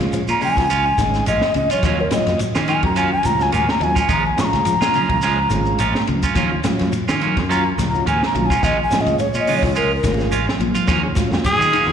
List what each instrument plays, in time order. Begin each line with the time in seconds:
Already playing: transistor combo organ G#3 C#4 F4
0.00 fingered electric bass C#2, snare, ride bell, high conga, shekere
0.12 clean electric guitar F3, muted fingered electric bass stroke, muted clean electric guitar stroke, ride bell, high conga, shekere
0.28 fingered electric bass A#2, clean electric guitar C#4 F4, ocarina A#5, shekere
0.41 clean electric guitar C#3 G#3 C#4 F4, ocarina G#5, open hi-hat, low conga, shekere
0.57 fingered electric bass C#2, clean electric guitar F3, muted clean electric guitar stroke, kick, snare, ride bell
0.69 clean electric guitar C#4 F4, muted clean electric guitar stroke, ride bell, high conga, shekere
0.86 muted clean electric guitar stroke
0.98 fingered electric bass G#1, clean electric guitar D#3, transistor combo organ G#3 C#4 D#4, muted clean electric guitar stroke, kick, snare, ride bell, high conga, shekere
1.14 snare, shekere
1.26 fingered electric bass A#1, clean electric guitar G#3 C#4 F4, ocarina D#5, ride bell, high conga, shekere
1.37 high conga
1.41 muted clean electric guitar stroke, snare
1.46 high conga
1.54 fingered electric bass C#2, clean electric guitar C#3, ocarina D#5, muted clean electric guitar stroke, ride bell, shekere
1.70 clean electric guitar C#4 F4, ocarina C#5, ride bell, shekere
1.74 low conga
1.83 fingered electric bass D#2, clean electric guitar F3 F#3 A#3 C#4 F4, transistor combo organ C#4 F4, kick, ride bell, shekere
1.98 transistor combo organ C#4 F#4, ocarina A#4, muted clean electric guitar stroke, high conga
2.11 transistor combo organ F#3 C#4 F4, clean electric guitar F#3, ocarina D#5, muted clean electric guitar stroke, snare, ride bell, high conga, shekere
2.27 fingered electric bass F#2, snare, ride bell, high conga, shekere
2.39 clean electric guitar F#3, muted clean electric guitar stroke, muted fingered electric bass stroke, ride bell, high conga, shekere
2.55 fingered electric bass D#3, clean electric guitar A#3 C#4 F4, snare, shekere
2.68 clean electric guitar D#3 F#3 A#3 C#4 F4, ocarina G#5, ride bell, low conga, shekere
2.83 fingered electric bass F#2, clean electric guitar F#3, ocarina A#5, muted clean electric guitar stroke, kick, ride bell
2.96 clean electric guitar F#3 A#3 C#4 F4, transistor combo organ F#3 C#4 F4, ocarina G#5, ride bell, high conga, shekere
3.12 ocarina G#5, muted clean electric guitar stroke
3.23 fingered electric bass C#2, clean electric guitar F3, ocarina A#5, muted clean electric guitar stroke, ride bell, high conga, shekere
3.40 transistor combo organ F#3 C#4 F4, ocarina G#5, snare, low conga, shekere
3.52 fingered electric bass D#2, clean electric guitar F#3 A#3 C#4 F4, ocarina G#5, ride bell, high conga, shekere
3.68 ocarina A#5, muted clean electric guitar stroke, snare, high conga
3.80 fingered electric bass D#2, clean electric guitar D#3, transistor combo organ F#3 C#4 F4, ocarina G#5, muted clean electric guitar stroke, ride bell, low conga, shekere
3.95 clean electric guitar A#3 C#4 F4, kick, shekere
4.00 ocarina G#5
4.08 fingered electric bass A#1, clean electric guitar D#3 F3 G#3 C#4 F4, ocarina A#5, kick, ride bell, shekere
4.25 ocarina G#5, muted clean electric guitar stroke, high conga
4.37 clean electric guitar F3, transistor combo organ G#3 C#4 F4, ocarina C#6, muted clean electric guitar stroke, snare, ride bell, high conga, shekere
4.45 ocarina A#5
4.53 fingered electric bass C#2, snare, ride bell, high conga, shekere
4.65 clean electric guitar F3, muted clean electric guitar stroke, muted fingered electric bass stroke, ride bell, high conga, shekere
4.81 fingered electric bass A#2, clean electric guitar G#3 C#4 F4, snare, shekere
4.94 clean electric guitar C#3 F3 C#4 F4, muted clean electric guitar stroke, ride bell, low conga, shekere
5.09 fingered electric bass C#2, clean electric guitar F3, muted clean electric guitar stroke, kick, ride bell
5.22 clean electric guitar F3 G#3 C#4 F4, snare, ride bell, high conga, shekere
5.40 muted clean electric guitar stroke
5.50 fingered electric bass G#1, clean electric guitar D#3, transistor combo organ G#3 C#4 F4, muted clean electric guitar stroke, ride bell, high conga, shekere
5.66 shekere
5.79 fingered electric bass A#1, clean electric guitar F3 G#3 C#4 F4, ride bell, high conga, shekere
5.95 muted clean electric guitar stroke, snare, high conga
6.07 fingered electric bass C#2, clean electric guitar C#3, muted clean electric guitar stroke, ride bell, high conga, low conga, shekere
6.23 clean electric guitar C#4 F4, muted clean electric guitar stroke, kick, ride bell, shekere
6.34 fingered electric bass D#2, clean electric guitar F3 F#3 A#3 C#4 F4, transistor combo organ C#4 F4, kick, ride bell, shekere
6.51 transistor combo organ C#4 F4, muted clean electric guitar stroke, high conga
6.64 clean electric guitar F#3, transistor combo organ F#3 C#4 F4, muted clean electric guitar stroke, snare, ride bell, high conga, shekere
6.79 fingered electric bass F#2, snare, ride bell, high conga, shekere
6.92 clean electric guitar F#3, muted clean electric guitar stroke, muted fingered electric bass stroke, ride bell, high conga, shekere
7.08 fingered electric bass D#3, clean electric guitar A#3 C#4 F4, snare, shekere
7.20 clean electric guitar D#3 F#3 A#3 C#4 F4, ride bell, low conga, shekere
7.36 fingered electric bass F#2, clean electric guitar F#3, muted clean electric guitar stroke, kick, snare, ride bell
7.49 clean electric guitar F#3 A#3 C#4 F4, transistor combo organ F#3 C#4 F4, ocarina A#5, ride bell, high conga, shekere
7.65 muted clean electric guitar stroke
7.77 fingered electric bass C#2, clean electric guitar F3, muted clean electric guitar stroke, snare, ride bell, high conga, shekere
7.89 ocarina A#5
7.94 transistor combo organ F#3 C#4 F4, low conga, shekere
8.06 fingered electric bass D#2, clean electric guitar F#3 A#3 C#4 F4, ocarina G#5, ride bell, high conga, shekere
8.23 ocarina A#5, muted clean electric guitar stroke, snare
8.33 fingered electric bass B1, clean electric guitar D#3, transistor combo organ F#3 C#4 F4, muted clean electric guitar stroke, ride bell, high conga, low conga, shekere
8.46 ocarina G#5
8.50 clean electric guitar A#3 C#4 F4, kick, shekere
8.62 fingered electric bass A#1, clean electric guitar D#3 G#3 C#4 F4, ocarina D#5, kick, snare, ride bell, shekere
8.78 muted clean electric guitar stroke, high conga
8.83 ocarina G#5
8.90 clean electric guitar F3, transistor combo organ G#3 C#4 F4, muted clean electric guitar stroke, snare, ride bell, high conga, shekere
9.01 ocarina D#5
9.06 fingered electric bass C#2, ride bell, high conga, shekere
9.19 clean electric guitar F3, ocarina C#5, muted clean electric guitar stroke, muted fingered electric bass stroke, ride bell, high conga, shekere
9.34 fingered electric bass A#2, clean electric guitar C#4 F4, shekere
9.40 ocarina D#5
9.47 clean electric guitar C#3 G#3 C#4 F4, open hi-hat, low conga, shekere
9.58 ocarina C#5
9.63 fingered electric bass C#2, clean electric guitar F3, muted clean electric guitar stroke, kick, snare, ride bell
9.75 clean electric guitar G#3 C#4 F4, ocarina A#4, ride bell, high conga, shekere
9.92 ocarina A#4, muted clean electric guitar stroke
10.03 fingered electric bass G#1, clean electric guitar D#3, transistor combo organ G#3 C#4 F4, muted clean electric guitar stroke, kick, snare, ride bell, high conga, shekere
10.14 high conga
10.19 snare, shekere
10.30 fingered electric bass A#1, clean electric guitar G#3 C#4 F4, ride bell, shekere
10.47 muted clean electric guitar stroke, snare
10.52 low conga
10.60 fingered electric bass A#1, clean electric guitar A#2, muted clean electric guitar stroke, ride bell, low conga, shekere
10.70 low conga
10.75 clean electric guitar F4, muted clean electric guitar stroke, ride bell, low conga, shekere
10.87 fingered electric bass D#2, clean electric guitar F3 F#3 A#3 C#4 F4, transistor combo organ C#4 F4, kick, snare, ride bell, shekere
11.03 transistor combo organ C#4 G#4, muted clean electric guitar stroke
11.15 transistor combo organ F#3 C#4 F4, clean electric guitar F#3, muted clean electric guitar stroke, kick, snare, ride bell, high conga, shekere
11.31 fingered electric bass F#2, snare, high conga, shekere
11.43 clean electric guitar F#3, tenor saxophone G#4, trumpet G#5, muted clean electric guitar stroke, muted fingered electric bass stroke, kick, ride bell, high conga, shekere
11.59 fingered electric bass D#3, clean electric guitar A#3 C#4 F4, shekere
11.71 clean electric guitar D#3 F#3 A#3 C#4 F4, ride bell, low conga, shekere
11.87 fingered electric bass F#2, muted clean electric guitar stroke